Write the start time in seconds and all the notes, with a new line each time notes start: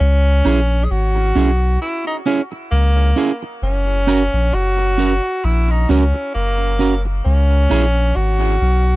0.00 C#2 C#4
0.45 A#1 C#4 E4 G#4, tambourine, high woodblock
0.84 G#4
0.91 G#1 F#4
1.16 muted clean electric guitar stroke
1.35 B1 C#4 E4 G#4, tambourine
1.81 E4
2.07 D#4
2.25 C#4 E4 G#4, tambourine
2.52 muted clean electric guitar stroke
2.71 C#2 A#3
3.16 C#4 E4 G#4, tambourine
3.43 muted clean electric guitar stroke
3.62 F#1 C#4
4.07 C#4 F#4 A#4, tambourine, high woodblock
4.33 A#1
4.53 F#1 F#4
4.78 muted clean electric guitar stroke
4.98 C#4 F#4 A#4, tambourine
5.44 A#1 E4
5.71 D#4
5.89 C#2 C#4 F#4 A#4, tambourine
6.15 muted clean electric guitar stroke
6.34 F#1 A#3
6.79 C#4 F#4 A#4, tambourine
7.05 muted clean electric guitar stroke
7.25 C#2 C#4
7.70 A#1 C#4 E4 G#4, tambourine, high woodblock
8.16 G#1 F#4
8.61 B1